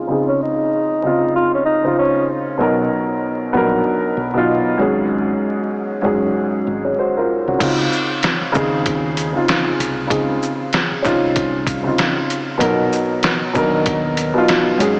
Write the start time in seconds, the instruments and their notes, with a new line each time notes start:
Already playing: upright piano C#3 C4 D#4 F4 G#4
0.07 upright piano C#3 C4 D#4
0.11 upright piano G#4
0.28 tenor saxophone C#4
0.42 tenor saxophone D#4
1.02 upright piano C#3 C4 D#4
1.06 upright piano F4
1.35 tenor saxophone F4
1.54 tenor saxophone C#4
1.65 tenor saxophone D#4
1.83 upright piano C#3 D#4 C5
1.87 upright piano F4
1.99 tenor saxophone C#4
2.57 fingered electric bass B1, upright piano B2 F#3 D#4
2.61 upright piano A#4
3.53 fingered electric bass A#1, upright piano F#3 B3 D4
3.57 upright piano A#4
3.62 upright piano D#4
4.17 fingered electric bass B1
4.34 upright piano B2 F#3 D#4
4.38 upright piano F4
4.78 fingered electric bass G#1, upright piano G#2 F#3 C#4 G#4
6.02 fingered electric bass F#1, upright piano G#2 F#3 C#4
6.06 upright piano G#4
6.67 fingered electric bass G#1
6.85 upright piano G#4 C#5
6.99 upright piano F#4 C5
7.17 upright piano F4 A#4
7.48 fingered electric bass C2, upright piano C#4 F#4
7.58 fingered electric bass C#2, upright piano C#3 C4 D#4, kick, closed hi-hat, crash
7.62 upright piano F4
7.92 shaker
8.23 snare, closed hi-hat
8.41 muted fingered electric bass stroke
8.52 fingered electric bass D#2, upright piano C#3 C4 D#4, kick, shaker
8.56 upright piano G#4
8.86 kick, closed hi-hat
9.17 closed hi-hat, shaker
9.33 upright piano C#3 C4 D#4
9.37 upright piano F4
9.48 snare, closed hi-hat
9.79 fingered electric bass C2, closed hi-hat, shaker
10.07 fingered electric bass C#2, upright piano C#3 C4 D#4, kick, closed hi-hat
10.11 upright piano G#4
10.42 shaker
10.73 snare, closed hi-hat
10.91 muted fingered electric bass stroke
11.02 fingered electric bass C2, upright piano C4 C#4 D#4, kick, snare, shaker
11.06 upright piano F4
11.36 kick, closed hi-hat
11.67 kick, closed hi-hat, shaker
11.83 upright piano C#3 C4 D#4 F4
11.98 snare, closed hi-hat
12.30 closed hi-hat, shaker
12.58 fingered electric bass B1, upright piano B2 F#3 D#4 A#4, kick, closed hi-hat
12.92 shaker
13.23 snare, closed hi-hat
13.41 muted fingered electric bass stroke
13.53 fingered electric bass D#2, upright piano B2 F#3 D4, kick, shaker
13.57 upright piano A#4
13.62 upright piano D#4
13.86 kick, closed hi-hat
14.17 closed hi-hat, shaker
14.34 upright piano B2 F#3 D#4
14.38 upright piano F4
14.48 snare, closed hi-hat
14.77 fingered electric bass G#1, upright piano G#2 F#3 C#4, closed hi-hat, shaker
14.82 upright piano G#4